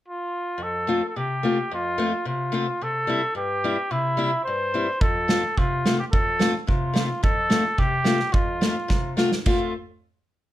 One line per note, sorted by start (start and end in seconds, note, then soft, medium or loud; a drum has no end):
0.08 0.64 F4 medium
0.58 1.01 F2 soft
0.63 1.08 A4 medium
0.87 1.00 A3 medium
0.87 1.01 C4 medium
0.87 1.01 F4 medium
1.08 1.18 A4 medium
1.16 1.58 C3 soft
1.16 1.72 G4 medium
1.43 1.56 A3 medium
1.43 1.57 C4 soft
1.43 1.57 F4 medium
1.72 2.13 F2 medium
1.72 2.24 F4 medium
1.98 2.11 A3 medium
1.98 2.11 C4 medium
1.98 2.12 F4 medium
2.25 2.66 C3 soft
2.25 2.84 F4 medium
2.52 2.65 A3 medium
2.52 2.65 C4 medium
2.52 2.66 F4 medium
2.81 3.22 C3 soft
2.81 3.36 A4 medium
3.07 3.20 G3 medium
3.07 3.20 C4 medium
3.07 3.21 E4 medium
3.35 3.76 G2 medium
3.35 3.93 G4 medium
3.64 3.76 G3 medium
3.64 3.76 C4 soft
3.64 3.76 E4 medium
3.91 4.31 C3 medium
3.91 4.43 E4 medium
4.17 4.29 G3 medium
4.17 4.30 C4 medium
4.17 4.30 E4 medium
4.44 4.88 G2 medium
4.44 5.03 C5 medium
4.74 4.86 G3 medium
4.74 4.86 C4 medium
4.74 4.87 E4 medium
5.01 5.43 F2 medium
5.01 5.60 A4 medium
5.01 kick medium
5.28 5.41 A3 medium
5.28 5.42 C4 medium
5.28 5.42 F4 medium
5.28 snare medium
5.57 5.99 C3 medium
5.57 5.98 F4 medium
5.57 kick medium
5.86 5.98 A3 medium
5.86 5.98 C4 medium
5.86 5.99 F4 medium
5.86 snare medium
5.99 6.05 G4 medium
6.12 6.54 F2 medium
6.12 6.64 A4 medium
6.12 kick medium
6.39 6.52 A3 medium
6.39 6.52 C4 medium
6.39 6.53 F4 medium
6.39 snare medium
6.67 7.09 C3 medium
6.67 7.20 F4 medium
6.67 kick medium
6.94 7.07 A3 medium
6.94 7.08 C4 medium
6.94 7.08 F4 medium
6.94 snare medium
7.23 7.64 F2 medium
7.23 7.80 A4 medium
7.23 kick medium
7.50 7.62 A3 medium
7.50 7.63 C4 medium
7.50 7.63 F4 medium
7.50 snare medium
7.78 8.19 C3 medium
7.78 8.34 G4 medium
7.78 kick medium
8.04 8.17 A3 medium
8.04 8.18 C4 medium
8.04 8.18 F4 medium
8.04 snare medium
8.19 snare soft
8.32 8.74 F2 medium
8.32 9.17 F4 medium
8.32 kick medium
8.61 8.74 A3 medium
8.61 8.74 C4 medium
8.61 8.75 F4 medium
8.61 snare medium
8.88 9.31 C3 medium
8.88 kick medium
8.88 snare soft
9.17 9.30 A3 medium
9.17 9.30 C4 medium
9.17 9.30 F4 medium
9.17 snare soft
9.32 snare medium
9.46 9.72 A3 medium
9.46 9.73 C4 medium
9.46 9.72 F4 medium
9.46 9.73 F4 medium
9.46 kick medium
9.46 crash medium